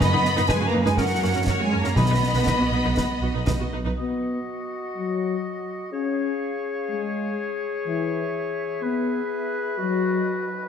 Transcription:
0.00 double bass section F#2, timpani F#2, cello section B3, viola section D#4 B4, violin section D#5 B5, flute section B5, concert bass drum, snare
0.12 double bass section F#2, viola section D#4 B4
0.25 snare
0.36 double bass section F#2, viola section D#4 B4, snare
0.48 double bass section F#2, cello section G#3, viola section D#4 B4, violin section B4 G#5, flute section G#5, concert bass drum, snare
0.60 double bass section F#2, viola section B3 F#4
0.67 cello section A#3, flute section A#5, violin section A#5
0.73 double bass section F#2, viola section D#4 B4
0.83 double bass section F#2, cello section G#3, viola section D#4 B4, violin section G#5, flute section G#5, snare
0.97 double bass section F#2, cello section F#3, viola section C#4 A#4, violin section A#4 F#5, flute section F#5, concert bass drum, snare
1.23 double bass section F#2, viola section A#3 F#4
1.35 double bass section F#2, viola section C#4 A#4
1.47 double bass section F#2, cello section F#3, viola section C#4 A#4, violin section C#5 F#5, flute section F#5, concert bass drum, snare
1.59 double bass section F#2, viola section A#3 F#4, violin section G#5
1.64 cello section G#3, flute section G#5
1.71 double bass section F#2, viola section C#4 A#4
1.79 cello section A#3, violin section A#5, flute section A#5
1.84 double bass section F#2, viola section C#4 A#4, snare
1.95 double bass section B1, timpani B2, cello section B3, viola section D#4 B4, violin section D#5 B5, flute section B5, concert bass drum, snare
2.09 double bass section B1, viola section D#4 B4
2.34 double bass section B1, viola section D#4 B4
2.47 double bass section B1, viola section D#4 B4, concert bass drum, snare
2.60 double bass section B1, viola section B3 F#4
2.71 double bass section B1, viola section D#4 B4
2.85 double bass section B1, viola section D#4 B4
2.97 double bass section B1, viola section D#4 B4, concert bass drum, snare
3.21 double bass section B1, viola section B3 F#4
3.34 double bass section B1, viola section D#4 B4
3.46 double bass section B1, viola section D#4 B4, concert bass drum, snare
3.59 double bass section B1, viola section B3 F#4
3.72 double bass section B1, viola section D#4 B4
3.84 double bass section B1, viola section D#4 B4
3.96 french horn section B3, clarinet F#4, oboe D#5, flute section F#5
4.97 french horn section F#3
5.92 french horn section C#4, clarinet G#4, oboe C#5, flute section F5
6.89 french horn section G#3
7.86 french horn section E3, flute section E5
8.82 french horn section B3, oboe B4
9.78 french horn section F#3, clarinet F#4, flute section D#5

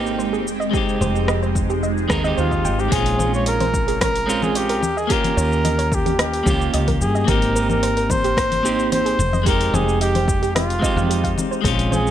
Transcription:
Already playing: fretless electric bass G#1, ambient pad G#3 C4 G4, clean electric guitar A#3 C4 D#4 G4
0.07 shaker
0.19 synth arpeggio sound C5, shaker
0.33 synth arpeggio sound G#4, shaker
0.46 fretless electric bass F1, ambient pad F3 G#3 D#4, shaker
0.60 synth arpeggio sound D#5, shaker
0.71 clean electric guitar G#3 C4, synth arpeggio sound G4, kick, shaker
0.75 clean electric guitar D#4 G4
0.89 shaker
1.01 fretless electric bass F1, synth arpeggio sound C5, shaker
1.16 shaker
1.28 synth arpeggio sound D#5, cross-stick, shaker
1.42 synth arpeggio sound C5, shaker
1.55 kick, shaker
1.70 synth arpeggio sound G4, shaker
1.83 synth arpeggio sound D#5, shaker
1.98 shaker
2.08 fretless electric bass D#2, clean electric guitar G#3 C4 D#4 A#4, synth arpeggio sound G#4, kick, cross-stick, shaker
2.21 clean electric guitar G#3 C4, synth arpeggio sound D#5, shaker
2.25 clean electric guitar D#4 G4
2.37 fretless electric bass D#2, muted trumpet F4, synth arpeggio sound C5, shaker
2.51 synth arpeggio sound D#5, kick, shaker
2.65 fretless electric bass G#1, synth arpeggio sound G5, shaker
2.79 synth arpeggio sound G4, muted trumpet G4, shaker
2.89 fretless electric bass A#1, clean electric guitar G#3 C4, synth arpeggio sound G#4, muted trumpet G#4, kick, open hi-hat, shaker
2.93 clean electric guitar C#4 F4
3.06 open hi-hat, shaker
3.19 synth arpeggio sound C5, low conga, shaker
3.34 muted trumpet C#5, shaker
3.46 muted trumpet A#4, synth arpeggio sound C#5, open hi-hat, shaker
3.60 synth arpeggio sound C5, open hi-hat, low conga, shaker
3.74 kick, shaker
3.88 synth arpeggio sound G#4, open hi-hat, shaker
4.01 muted trumpet A#4, synth arpeggio sound C#5, kick, cross-stick, open hi-hat, low conga, shaker
4.16 open hi-hat, shaker
4.26 clean electric guitar G#3 C4 C#4 F4, synth arpeggio sound G#4, shaker
4.42 muted trumpet G#4, low conga, shaker
4.55 muted trumpet G4, synth arpeggio sound C#5, open hi-hat, shaker
4.69 synth arpeggio sound A#4, open hi-hat, shaker
4.83 fretless electric bass D#2, low conga, shaker
4.97 muted trumpet G#4, synth arpeggio sound D#5, shaker
5.07 clean electric guitar A#3 C#4, synth arpeggio sound G4, kick, open hi-hat, shaker
5.11 clean electric guitar F4 G4, muted trumpet A#4
5.24 open hi-hat, low conga, shaker
5.37 fretless electric bass D#2, synth arpeggio sound C#5, shaker
5.53 shaker
5.64 synth arpeggio sound D#5, open hi-hat, low conga, shaker
5.78 synth arpeggio sound C#5, open hi-hat, shaker
5.92 muted trumpet G4, kick, shaker
6.06 synth arpeggio sound G4, open hi-hat, low conga, shaker
6.19 muted trumpet G4, synth arpeggio sound D#5, cross-stick, open hi-hat, shaker
6.34 open hi-hat, shaker
6.43 fretless electric bass C#2, clean electric guitar A#3 C#4, synth arpeggio sound G4, kick, low conga, shaker
6.48 clean electric guitar F4 G4
6.61 shaker
6.74 fretless electric bass C#2, synth arpeggio sound D#5, open hi-hat, shaker
6.88 synth arpeggio sound A#4, kick, open hi-hat, low conga, shaker
7.01 fretless electric bass G2, muted trumpet G#4, shaker
7.15 synth arpeggio sound D#5, shaker
7.25 fretless electric bass G#1, clean electric guitar A#3 C4, synth arpeggio sound G4, muted trumpet A#4, kick, open hi-hat, low conga, shaker
7.29 clean electric guitar D#4 G4
7.42 open hi-hat, shaker
7.55 synth arpeggio sound A#4, shaker
7.70 muted trumpet A#4, low conga, shaker
7.83 synth arpeggio sound C5, open hi-hat, shaker
7.97 synth arpeggio sound A#4, open hi-hat, shaker
8.10 muted trumpet C5, kick, low conga, shaker
8.24 synth arpeggio sound G4, open hi-hat, shaker
8.37 synth arpeggio sound C5, kick, cross-stick, open hi-hat, shaker
8.52 open hi-hat, low conga, shaker
8.63 clean electric guitar A#3 C4 D#4 G4, synth arpeggio sound G4, shaker
8.80 shaker
8.92 synth arpeggio sound C5, muted trumpet C5, open hi-hat, low conga, shaker
9.06 synth arpeggio sound G#4, open hi-hat, shaker
9.19 fretless electric bass F1, shaker
9.33 synth arpeggio sound D#5, low conga, shaker
9.43 clean electric guitar G#3 C4, synth arpeggio sound G4, kick, open hi-hat
9.47 clean electric guitar D#4 G4, muted trumpet A#4, shaker
9.61 open hi-hat, shaker
9.73 fretless electric bass F1, muted trumpet G#4, synth arpeggio sound C5, low conga, shaker
9.89 shaker
10.01 muted trumpet G4, synth arpeggio sound D#5, open hi-hat, shaker
10.15 synth arpeggio sound C5, open hi-hat, low conga, shaker
10.28 kick, shaker
10.43 synth arpeggio sound G4, open hi-hat, shaker
10.55 muted trumpet F4, synth arpeggio sound D#5, cross-stick, open hi-hat, low conga, shaker
10.70 open hi-hat, shaker
10.79 clean electric guitar G#3 C4, synth arpeggio sound D#5, kick
10.83 clean electric guitar D#4 G4, shaker
10.96 fretless electric bass F2, synth arpeggio sound F5, low conga, shaker
11.10 synth arpeggio sound G4, open hi-hat, shaker
11.24 synth arpeggio sound F5, kick, open hi-hat, shaker
11.38 low conga, shaker
11.51 synth arpeggio sound C5, shaker
11.61 fretless electric bass A#1, clean electric guitar G#3 C4, synth arpeggio sound G#4, kick, open hi-hat
11.66 clean electric guitar C#4 F4, shaker
11.79 open hi-hat, shaker
11.92 muted trumpet G#4, synth arpeggio sound C5, low conga, shaker
12.07 shaker

